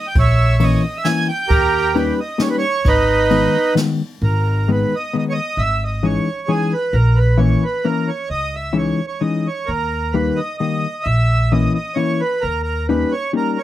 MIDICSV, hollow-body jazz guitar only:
0, 0, Header, 1, 2, 480
1, 0, Start_track
1, 0, Key_signature, 5, "minor"
1, 0, Tempo, 454545
1, 163, Time_signature, 3, 2, 24, 8
1, 14396, End_track
2, 0, Start_track
2, 0, Title_t, "Hollow-body jazz guitar"
2, 0, Program_c, 0, 26
2, 632, Note_on_c, 0, 52, 72
2, 633, Note_on_c, 0, 58, 57
2, 637, Note_on_c, 0, 64, 73
2, 646, Note_on_c, 0, 61, 61
2, 886, Note_off_c, 0, 58, 0
2, 887, Note_off_c, 0, 52, 0
2, 889, Note_off_c, 0, 64, 0
2, 894, Note_off_c, 0, 61, 0
2, 1111, Note_on_c, 0, 52, 54
2, 1116, Note_on_c, 0, 58, 47
2, 1120, Note_on_c, 0, 61, 57
2, 1121, Note_on_c, 0, 64, 58
2, 1365, Note_off_c, 0, 52, 0
2, 1368, Note_off_c, 0, 58, 0
2, 1368, Note_off_c, 0, 61, 0
2, 1370, Note_off_c, 0, 64, 0
2, 2064, Note_on_c, 0, 61, 69
2, 2068, Note_on_c, 0, 63, 80
2, 2073, Note_on_c, 0, 55, 74
2, 2073, Note_on_c, 0, 58, 65
2, 2317, Note_off_c, 0, 63, 0
2, 2318, Note_off_c, 0, 55, 0
2, 2318, Note_off_c, 0, 61, 0
2, 2321, Note_off_c, 0, 58, 0
2, 2515, Note_on_c, 0, 58, 56
2, 2519, Note_on_c, 0, 55, 67
2, 2521, Note_on_c, 0, 61, 49
2, 2528, Note_on_c, 0, 63, 72
2, 2781, Note_off_c, 0, 58, 0
2, 2782, Note_off_c, 0, 55, 0
2, 2783, Note_off_c, 0, 61, 0
2, 2787, Note_off_c, 0, 63, 0
2, 3493, Note_on_c, 0, 56, 69
2, 3493, Note_on_c, 0, 59, 60
2, 3500, Note_on_c, 0, 51, 74
2, 3503, Note_on_c, 0, 63, 83
2, 3753, Note_off_c, 0, 59, 0
2, 3754, Note_off_c, 0, 56, 0
2, 3757, Note_off_c, 0, 51, 0
2, 3758, Note_off_c, 0, 63, 0
2, 3960, Note_on_c, 0, 51, 70
2, 3964, Note_on_c, 0, 56, 54
2, 3968, Note_on_c, 0, 63, 56
2, 3970, Note_on_c, 0, 59, 52
2, 4233, Note_off_c, 0, 51, 0
2, 4235, Note_off_c, 0, 56, 0
2, 4236, Note_off_c, 0, 63, 0
2, 4238, Note_off_c, 0, 59, 0
2, 4945, Note_on_c, 0, 51, 61
2, 4947, Note_on_c, 0, 56, 63
2, 4953, Note_on_c, 0, 59, 64
2, 4954, Note_on_c, 0, 63, 73
2, 5205, Note_off_c, 0, 51, 0
2, 5205, Note_off_c, 0, 56, 0
2, 5207, Note_off_c, 0, 59, 0
2, 5209, Note_off_c, 0, 63, 0
2, 5422, Note_on_c, 0, 59, 48
2, 5429, Note_on_c, 0, 56, 47
2, 5437, Note_on_c, 0, 51, 51
2, 5438, Note_on_c, 0, 63, 60
2, 5683, Note_off_c, 0, 59, 0
2, 5687, Note_off_c, 0, 56, 0
2, 5689, Note_off_c, 0, 63, 0
2, 5690, Note_off_c, 0, 51, 0
2, 6367, Note_on_c, 0, 52, 67
2, 6371, Note_on_c, 0, 61, 56
2, 6376, Note_on_c, 0, 56, 68
2, 6382, Note_on_c, 0, 63, 63
2, 6630, Note_off_c, 0, 52, 0
2, 6630, Note_off_c, 0, 61, 0
2, 6634, Note_off_c, 0, 56, 0
2, 6635, Note_off_c, 0, 63, 0
2, 6846, Note_on_c, 0, 52, 58
2, 6849, Note_on_c, 0, 56, 50
2, 6855, Note_on_c, 0, 61, 42
2, 6855, Note_on_c, 0, 63, 68
2, 7109, Note_off_c, 0, 52, 0
2, 7109, Note_off_c, 0, 56, 0
2, 7110, Note_off_c, 0, 61, 0
2, 7112, Note_off_c, 0, 63, 0
2, 7789, Note_on_c, 0, 64, 72
2, 7793, Note_on_c, 0, 52, 74
2, 7800, Note_on_c, 0, 61, 66
2, 7804, Note_on_c, 0, 58, 59
2, 8060, Note_off_c, 0, 64, 0
2, 8062, Note_off_c, 0, 52, 0
2, 8065, Note_off_c, 0, 61, 0
2, 8068, Note_off_c, 0, 58, 0
2, 8285, Note_on_c, 0, 58, 49
2, 8287, Note_on_c, 0, 52, 47
2, 8290, Note_on_c, 0, 61, 50
2, 8295, Note_on_c, 0, 64, 52
2, 8548, Note_off_c, 0, 58, 0
2, 8550, Note_off_c, 0, 52, 0
2, 8551, Note_off_c, 0, 61, 0
2, 8553, Note_off_c, 0, 64, 0
2, 9217, Note_on_c, 0, 61, 68
2, 9220, Note_on_c, 0, 63, 75
2, 9223, Note_on_c, 0, 52, 64
2, 9225, Note_on_c, 0, 56, 67
2, 9499, Note_off_c, 0, 61, 0
2, 9499, Note_off_c, 0, 63, 0
2, 9502, Note_off_c, 0, 52, 0
2, 9502, Note_off_c, 0, 56, 0
2, 9726, Note_on_c, 0, 52, 50
2, 9732, Note_on_c, 0, 56, 42
2, 9733, Note_on_c, 0, 63, 54
2, 9735, Note_on_c, 0, 61, 39
2, 10001, Note_off_c, 0, 61, 0
2, 10002, Note_off_c, 0, 52, 0
2, 10002, Note_off_c, 0, 56, 0
2, 10003, Note_off_c, 0, 63, 0
2, 10708, Note_on_c, 0, 55, 59
2, 10713, Note_on_c, 0, 51, 61
2, 10714, Note_on_c, 0, 58, 63
2, 10719, Note_on_c, 0, 63, 63
2, 10975, Note_off_c, 0, 55, 0
2, 10977, Note_off_c, 0, 51, 0
2, 10977, Note_off_c, 0, 58, 0
2, 10980, Note_off_c, 0, 63, 0
2, 11196, Note_on_c, 0, 51, 54
2, 11196, Note_on_c, 0, 55, 42
2, 11202, Note_on_c, 0, 58, 45
2, 11209, Note_on_c, 0, 63, 49
2, 11460, Note_off_c, 0, 55, 0
2, 11461, Note_off_c, 0, 51, 0
2, 11463, Note_off_c, 0, 58, 0
2, 11467, Note_off_c, 0, 63, 0
2, 12164, Note_on_c, 0, 52, 71
2, 12169, Note_on_c, 0, 64, 69
2, 12172, Note_on_c, 0, 61, 59
2, 12174, Note_on_c, 0, 58, 55
2, 12423, Note_off_c, 0, 52, 0
2, 12424, Note_off_c, 0, 64, 0
2, 12426, Note_off_c, 0, 61, 0
2, 12427, Note_off_c, 0, 58, 0
2, 12629, Note_on_c, 0, 61, 49
2, 12637, Note_on_c, 0, 52, 51
2, 12637, Note_on_c, 0, 64, 55
2, 12643, Note_on_c, 0, 58, 47
2, 12892, Note_off_c, 0, 61, 0
2, 12894, Note_off_c, 0, 64, 0
2, 12896, Note_off_c, 0, 52, 0
2, 12899, Note_off_c, 0, 58, 0
2, 13613, Note_on_c, 0, 63, 76
2, 13619, Note_on_c, 0, 55, 64
2, 13620, Note_on_c, 0, 61, 63
2, 13622, Note_on_c, 0, 58, 66
2, 13861, Note_off_c, 0, 63, 0
2, 13864, Note_off_c, 0, 55, 0
2, 13865, Note_off_c, 0, 61, 0
2, 13866, Note_off_c, 0, 58, 0
2, 14078, Note_on_c, 0, 63, 60
2, 14079, Note_on_c, 0, 58, 52
2, 14081, Note_on_c, 0, 61, 46
2, 14085, Note_on_c, 0, 55, 54
2, 14333, Note_off_c, 0, 63, 0
2, 14334, Note_off_c, 0, 58, 0
2, 14335, Note_off_c, 0, 61, 0
2, 14336, Note_off_c, 0, 55, 0
2, 14396, End_track
0, 0, End_of_file